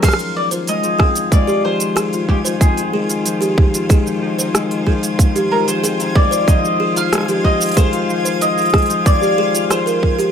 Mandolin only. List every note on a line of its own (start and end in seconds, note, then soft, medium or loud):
0.04 0.34 F5 loud
0.37 0.45 D5 medium
0.69 1.33 D#5 loud
1.33 1.63 D5 loud
1.65 2.31 C5 medium
2.29 2.38 G4 medium
2.61 4.51 G#4 medium
5.52 5.68 A#4 medium
5.68 6.16 C5 medium
6.16 6.48 D5 loud
6.49 6.93 D#5 loud
6.97 7.47 F5 loud
7.45 7.76 D#5 loud
7.77 8.41 C5 loud
8.42 9.06 D#5 loud
9.06 9.70 D5 loud
9.71 10.16 C5 medium